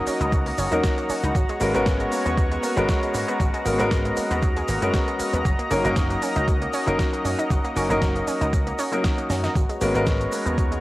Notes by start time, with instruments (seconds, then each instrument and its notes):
Already playing: grand piano F#3 A#3 C#4 D#4 A#4, analog synth pad F#4 D#5 A#5
0.07 synth arpeggio sound C#4, muted slap bass stroke, open hi-hat, shaker
0.20 slap bass C#2, synth arpeggio sound D#4, closed hi-hat, shaker
0.32 synth arpeggio sound F#3, kick, closed hi-hat, shaker
0.46 synth arpeggio sound A#3, open hi-hat, shaker
0.58 slap bass F#1, synth arpeggio sound C#4, open hi-hat, shaker
0.71 slap bass D#2, grand piano F#3 A#3 C#4 D#4 A#4, synth arpeggio sound D#4, closed hi-hat, shaker
0.84 synth arpeggio sound F#3, kick, snare, closed hi-hat, shaker
0.98 synth arpeggio sound A#3, closed hi-hat, shaker
1.09 synth arpeggio sound C#4, muted slap bass stroke, open hi-hat, shaker
1.22 slap bass C#2, synth arpeggio sound D#4, closed hi-hat, shaker
1.35 slap bass G#1, synth arpeggio sound F#3, analog synth pad B3 C#5, kick, closed hi-hat, shaker
1.49 synth arpeggio sound G#3, closed hi-hat, shaker
1.60 slap bass G#1, grand piano G#3 B3 C#4 F#4 A#4, synth arpeggio sound A#3, open hi-hat, shaker
1.73 slap bass G#1, grand piano G#3 B3 C#4 F#4 A#4, synth arpeggio sound B3, closed hi-hat, shaker
1.86 synth arpeggio sound F#3, kick, snare, closed hi-hat, shaker
2.00 synth arpeggio sound G#3, closed hi-hat, shaker
2.12 synth arpeggio sound A#3, open hi-hat, shaker
2.26 slap bass D#2, synth arpeggio sound B3, closed hi-hat, shaker
2.37 synth arpeggio sound F#3, kick, closed hi-hat, shaker
2.51 synth arpeggio sound G#3, closed hi-hat, shaker
2.63 synth arpeggio sound A#3, open hi-hat, shaker
2.76 slap bass G#1, grand piano G#3 B3 C#4 F#4 A#4, synth arpeggio sound B3, closed hi-hat, shaker
2.89 synth arpeggio sound F#3, kick, snare, closed hi-hat, shaker
3.03 synth arpeggio sound G#3, closed hi-hat, shaker
3.14 slap bass G#2, synth arpeggio sound A#3, open hi-hat, shaker
3.28 synth arpeggio sound B3, closed hi-hat, shaker
3.40 slap bass G#1, synth arpeggio sound F#3, analog synth pad D#5, kick, closed hi-hat, shaker
3.54 synth arpeggio sound G#3, closed hi-hat, shaker
3.65 slap bass G#1, grand piano G#3 B3 C#4 F#4 A#4, synth arpeggio sound A#3, open hi-hat, shaker
3.78 slap bass G#1, grand piano G#3 B3 C#4 F#4 A#4, synth arpeggio sound B3, closed hi-hat, shaker
3.91 synth arpeggio sound F#3, kick, snare, closed hi-hat, shaker
4.05 synth arpeggio sound G#3, closed hi-hat, shaker
4.17 synth arpeggio sound A#3, muted slap bass stroke, open hi-hat, shaker
4.31 slap bass D#2, synth arpeggio sound B3, closed hi-hat, shaker
4.42 synth arpeggio sound F#3, kick, closed hi-hat, shaker
4.56 synth arpeggio sound G#3, closed hi-hat, shaker
4.68 slap bass G#1, synth arpeggio sound A#3, open hi-hat, shaker
4.81 slap bass F#2, grand piano G#3 B3 C#4 F#4 A#4, synth arpeggio sound B3, closed hi-hat, shaker
4.94 synth arpeggio sound F#3, kick, snare, closed hi-hat, shaker
5.08 synth arpeggio sound G#3, closed hi-hat, shaker
5.19 synth arpeggio sound A#3, muted slap bass stroke, open hi-hat, shaker
5.33 slap bass D#2, synth arpeggio sound B3, closed hi-hat, shaker
5.45 slap bass F#1, synth arpeggio sound F#3, kick, closed hi-hat, shaker
5.59 synth arpeggio sound A#3, closed hi-hat, shaker
5.70 slap bass F#1, grand piano F#3 A#3 C#4 D#4 A#4, synth arpeggio sound C#4, open hi-hat, shaker
5.84 slap bass F#1, grand piano F#3 A#3 C#4 D#4 A#4, synth arpeggio sound D#4, closed hi-hat, shaker
5.96 synth arpeggio sound F#3, kick, snare, closed hi-hat, shaker
6.10 synth arpeggio sound A#3, closed hi-hat, shaker
6.22 synth arpeggio sound C#4, open hi-hat, shaker
6.36 slap bass C#2, synth arpeggio sound D#4, closed hi-hat, shaker
6.48 synth arpeggio sound F#3, kick, closed hi-hat, shaker
6.62 synth arpeggio sound A#3, closed hi-hat, shaker
6.73 synth arpeggio sound C#4, open hi-hat, shaker
6.86 slap bass F#1, grand piano F#3 A#3 C#4 D#4 A#4, synth arpeggio sound D#4, closed hi-hat, shaker
6.99 synth arpeggio sound F#3, kick, snare, closed hi-hat, shaker
7.13 synth arpeggio sound A#3, closed hi-hat, shaker
7.25 slap bass F#2, synth arpeggio sound C#4, open hi-hat, shaker
7.38 synth arpeggio sound D#4, closed hi-hat, shaker
7.50 slap bass F#1, synth arpeggio sound F#3, kick, closed hi-hat, shaker
7.64 synth arpeggio sound A#3, closed hi-hat, shaker
7.76 slap bass F#1, grand piano F#3 A#3 C#4 D#4 A#4, synth arpeggio sound C#4, open hi-hat, shaker
7.89 slap bass F#1, grand piano F#3 A#3 C#4 D#4 A#4, synth arpeggio sound D#4, closed hi-hat, shaker
8.02 synth arpeggio sound F#3, kick, snare, closed hi-hat, shaker
8.16 synth arpeggio sound A#3, closed hi-hat, shaker
8.27 synth arpeggio sound C#4, muted slap bass stroke, open hi-hat, shaker
8.41 slap bass C#2, synth arpeggio sound D#4, closed hi-hat, shaker
8.53 synth arpeggio sound F#3, kick, closed hi-hat, shaker
8.67 synth arpeggio sound A#3, closed hi-hat, shaker
8.79 synth arpeggio sound C#4, open hi-hat, shaker
8.91 grand piano F#3 A#3 C#4 D#4 A#4, synth arpeggio sound D#4, closed hi-hat, shaker
9.04 synth arpeggio sound F#3, kick, snare, closed hi-hat, shaker
9.18 synth arpeggio sound A#3, closed hi-hat, shaker
9.30 slap bass F#2, synth arpeggio sound C#4, snare, open hi-hat, shaker
9.43 synth arpeggio sound D#4, snare, closed hi-hat, shaker
9.55 slap bass G#1, synth arpeggio sound F#3, analog synth pad B3 F#4 C#5 A#5, kick, closed hi-hat, shaker
9.69 synth arpeggio sound G#3, closed hi-hat, shaker
9.81 slap bass G#1, grand piano G#3 B3 C#4 F#4 A#4, synth arpeggio sound A#3, open hi-hat, shaker
9.94 slap bass G#1, grand piano G#3 B3 C#4 F#4 A#4, synth arpeggio sound B3, closed hi-hat, shaker
10.06 synth arpeggio sound F#3, kick, snare, closed hi-hat, shaker
10.20 synth arpeggio sound G#3, closed hi-hat, shaker
10.32 synth arpeggio sound A#3, open hi-hat, shaker
10.46 slap bass D#2, synth arpeggio sound B3, closed hi-hat, shaker
10.58 synth arpeggio sound F#3, kick, closed hi-hat, shaker
10.71 synth arpeggio sound G#3, closed hi-hat, shaker